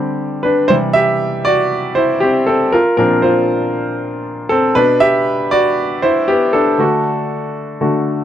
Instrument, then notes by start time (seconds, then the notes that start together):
grand piano
Already playing: D3 G3 C4 G4
0.43 D4 B4
0.68 C3 E3 G3 E4 C5
0.93 G4 E5
1.45 F#4 D5
1.95 E4 C5
2.20 C4 G4
2.47 C4 A4
2.72 F4 A#4
2.97 A#2 F3 C4 D4 A#4
3.22 F4 C5
4.49 C4 A4
4.75 B2 B3 D4 B4
5.00 G4 E5
5.51 F#4 D5
6.02 E4 C5
6.28 B3 G4
6.53 D4 A4
6.78 D3 A3 F#4
7.81 D3 A3 F#4